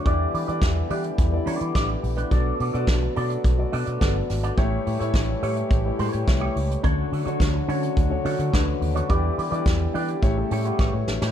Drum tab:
HH |x-oxx-oxx-oxx-ox|x-oxx-oxx-oxx-ox|x-oxx-oxx-oxx-ox|x-oxx-oxx-oxx-ox|
SD |----o-------o---|----o-------o-o-|----o-------o---|----o-------o---|
BD |o---o---o---o---|o---o---o---o---|o---o---o---o---|o---o---o---o---|

HH |x-oxx-oxx-ox----|
SD |----o-------o-oo|
BD |o---o---o---o---|